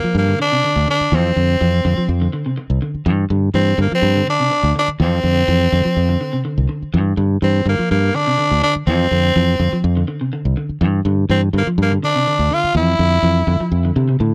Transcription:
Already playing: tenor saxophone A#3
0.04 clean electric guitar F3, muted fingered electric bass stroke
0.15 fingered electric bass G2, tenor saxophone A#3
0.28 clean electric guitar D3
0.40 clean electric guitar D3, tenor saxophone D4
0.52 clean electric guitar C3
0.64 clean electric guitar D3
0.76 fingered electric bass D2
0.88 clean electric guitar D3, tenor saxophone D4
1.01 muted fingered electric bass stroke
1.12 fingered electric bass F2, clean electric guitar E3, tenor saxophone C4
1.36 fingered electric bass F2, clean electric guitar D3
1.61 fingered electric bass F2, clean electric guitar E3
1.85 fingered electric bass F2, clean electric guitar D3
1.97 clean electric guitar F3, muted fingered electric bass stroke
2.09 fingered electric bass F2
2.22 clean electric guitar D3
2.33 clean electric guitar D3
2.46 clean electric guitar C3
2.58 muted clean electric guitar stroke
2.70 fingered electric bass C2
2.82 clean electric guitar D3
2.94 muted fingered electric bass stroke
3.06 fingered electric bass G2, clean electric guitar E3
3.30 fingered electric bass G2, clean electric guitar D3
3.54 fingered electric bass G2, clean electric guitar E3, tenor saxophone C4
3.78 fingered electric bass G2, clean electric guitar D3, tenor saxophone A#3
3.91 clean electric guitar F3, tenor saxophone C4, muted fingered electric bass stroke
4.02 fingered electric bass G2
4.16 clean electric guitar D3
4.27 clean electric guitar D3, tenor saxophone D4
4.40 clean electric guitar C3
4.51 muted clean electric guitar stroke
4.63 fingered electric bass D2
4.76 clean electric guitar D3, tenor saxophone D4
4.88 muted fingered electric bass stroke
5.00 fingered electric bass F2, clean electric guitar E3, tenor saxophone C4
5.24 fingered electric bass F2, clean electric guitar D3
5.48 fingered electric bass F2, clean electric guitar E3
5.72 fingered electric bass F2, clean electric guitar D3
5.85 clean electric guitar F3, muted fingered electric bass stroke
5.97 fingered electric bass F2
6.09 clean electric guitar D3
6.21 clean electric guitar D3
6.33 clean electric guitar C3
6.45 clean electric guitar D3
6.58 fingered electric bass C2
6.69 clean electric guitar D3
6.82 muted fingered electric bass stroke
6.94 fingered electric bass G2, clean electric guitar E3
7.17 fingered electric bass G2, clean electric guitar D3
7.42 fingered electric bass G2, clean electric guitar E3, tenor saxophone C4
7.66 fingered electric bass G2, clean electric guitar D3, tenor saxophone A#3
7.79 clean electric guitar F3, muted fingered electric bass stroke
7.91 fingered electric bass G2, tenor saxophone A#3
8.14 clean electric guitar D3, tenor saxophone D4
8.27 clean electric guitar C3
8.38 clean electric guitar D3
8.51 fingered electric bass D2
8.62 clean electric guitar D3, tenor saxophone D4
8.76 muted fingered electric bass stroke
8.87 fingered electric bass F2, clean electric guitar E3, tenor saxophone C4
9.11 fingered electric bass F2, clean electric guitar D3
9.36 fingered electric bass F2, clean electric guitar E3
9.60 fingered electric bass F2, clean electric guitar D3
9.72 clean electric guitar F3, muted fingered electric bass stroke
9.84 fingered electric bass F2
9.97 clean electric guitar D3
10.08 clean electric guitar D3
10.21 clean electric guitar C3
10.33 clean electric guitar D3
10.45 fingered electric bass C2
10.57 clean electric guitar D3
10.69 muted fingered electric bass stroke
10.81 fingered electric bass G2, clean electric guitar E3
11.05 fingered electric bass G2, clean electric guitar D3
11.29 fingered electric bass G2, clean electric guitar E3, tenor saxophone C4
11.53 fingered electric bass G2, clean electric guitar D3
11.58 tenor saxophone A#3
11.66 clean electric guitar F3, muted fingered electric bass stroke
11.78 fingered electric bass G2
11.82 tenor saxophone A#3
11.92 clean electric guitar D3
12.03 clean electric guitar D3, tenor saxophone D4
12.15 clean electric guitar C3
12.27 clean electric guitar D3
12.39 fingered electric bass D2
12.51 clean electric guitar D3, tenor saxophone F4
12.64 muted fingered electric bass stroke
12.75 fingered electric bass F2, clean electric guitar E3, tenor saxophone E4
12.99 fingered electric bass F2, clean electric guitar D3
13.22 fingered electric bass F2, clean electric guitar E3
13.47 fingered electric bass F2, clean electric guitar D3
13.60 clean electric guitar F3, muted fingered electric bass stroke
13.72 fingered electric bass F2
13.85 clean electric guitar D3
13.96 fingered electric bass C3, clean electric guitar D3
14.09 clean electric guitar C3
14.20 fingered electric bass A2, clean electric guitar D3

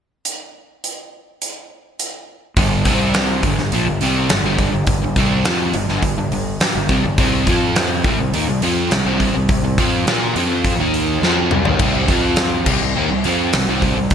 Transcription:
0.25 closed hi-hat
0.84 closed hi-hat
1.42 closed hi-hat
2.00 closed hi-hat
2.57 fingered electric bass G1, overdriven electric guitar G2 D3 G3, kick, open hi-hat
2.85 fingered electric bass C2, overdriven electric guitar C3 G3 C4, kick, open hi-hat
3.14 snare, open hi-hat
3.43 fingered electric bass G1, overdriven electric guitar G2 D3, kick, open hi-hat
3.58 fingered electric bass G1, overdriven electric guitar G2 D3, snare
3.72 fingered electric bass A#1, overdriven electric guitar A#2 F3, open hi-hat
3.87 fingered electric bass G1, overdriven electric guitar G2 D3
4.01 fingered electric bass C2, overdriven electric guitar C3 G3 C4, open hi-hat
4.29 fingered electric bass G1, overdriven electric guitar G2 D3, snare, open hi-hat
4.44 fingered electric bass G1, overdriven electric guitar G2 D3 G3
4.58 kick, open hi-hat
4.73 fingered electric bass G1, overdriven electric guitar G2 D3
4.87 fingered electric bass G1, overdriven electric guitar G2 D3, kick, open hi-hat
5.02 fingered electric bass G1, overdriven electric guitar G2 D3
5.16 fingered electric bass C2, overdriven electric guitar C3 G3 C4, kick, open hi-hat
5.45 fingered electric bass F2, overdriven electric guitar F3 C4 F4, snare, open hi-hat
5.73 fingered electric bass G1, overdriven electric guitar G2 D3, open hi-hat
5.89 fingered electric bass G1, overdriven electric guitar G2 D3, snare
6.02 fingered electric bass G1, overdriven electric guitar G2 D3, kick, open hi-hat
6.18 fingered electric bass G1, overdriven electric guitar G2 D3
6.32 fingered electric bass G1, overdriven electric guitar G2 D3, open hi-hat
6.60 snare, open hi-hat
6.75 fingered electric bass G1, overdriven electric guitar G2 D3
6.89 fingered electric bass C2, overdriven electric guitar C3 G3, kick, open hi-hat
7.04 fingered electric bass G1, overdriven electric guitar G2 D3
7.18 fingered electric bass C2, overdriven electric guitar C3 G3 C4, kick, open hi-hat
7.47 fingered electric bass F2, overdriven electric guitar F3 C4 F4, kick, open hi-hat
7.76 snare, open hi-hat
8.04 fingered electric bass C2, overdriven electric guitar C3 G3, kick, open hi-hat
8.19 fingered electric bass C2, overdriven electric guitar C3 G3
8.33 fingered electric bass D#2, overdriven electric guitar D#3 A#3, open hi-hat
8.47 fingered electric bass C2, overdriven electric guitar C3 G3
8.61 fingered electric bass F2, overdriven electric guitar F3 C4 F4, open hi-hat
8.91 fingered electric bass C2, overdriven electric guitar C3 G3, snare, open hi-hat
9.05 fingered electric bass C2, overdriven electric guitar C3 G3 C4
9.20 kick, open hi-hat
9.34 fingered electric bass C2, overdriven electric guitar C3 G3
9.49 fingered electric bass C2, overdriven electric guitar C3 G3, kick, open hi-hat
9.62 fingered electric bass C2, overdriven electric guitar C3 G3
9.78 fingered electric bass F2, overdriven electric guitar F3 C4 F4, kick, open hi-hat
10.06 fingered electric bass A#2, overdriven electric guitar A#3 F4 A#4, snare, open hi-hat
10.35 fingered electric bass F2, overdriven electric guitar F3 C4 F4, open hi-hat
10.64 kick, open hi-hat
10.79 fingered electric bass D#2, overdriven electric guitar D#3 A#3 D#4
10.94 open hi-hat
11.22 fingered electric bass F2, overdriven electric guitar F3 C4 F4, snare
11.51 fingered electric bass C2, overdriven electric guitar C3 G3, mid tom
11.65 fingered electric bass D#2, overdriven electric guitar D#3 A#3, floor tom
11.79 fingered electric bass C2, overdriven electric guitar C3 G3 C4, kick, crash
12.08 fingered electric bass F2, overdriven electric guitar F3 C4 F4, kick, open hi-hat
12.36 snare, open hi-hat
12.66 fingered electric bass C2, overdriven electric guitar C3 G3, kick, crash
12.82 fingered electric bass C2, overdriven electric guitar C3 G3
12.96 fingered electric bass D#2, overdriven electric guitar D#3 A#3
13.11 fingered electric bass C2, overdriven electric guitar C3 G3
13.24 fingered electric bass F2, overdriven electric guitar F3 C4 F4, open hi-hat
13.53 fingered electric bass C2, overdriven electric guitar C3 G3, snare, open hi-hat
13.68 fingered electric bass C2, overdriven electric guitar C3 G3 C4
13.82 kick, open hi-hat
13.97 fingered electric bass C2, overdriven electric guitar C3 G3
14.10 fingered electric bass C2, kick, open hi-hat

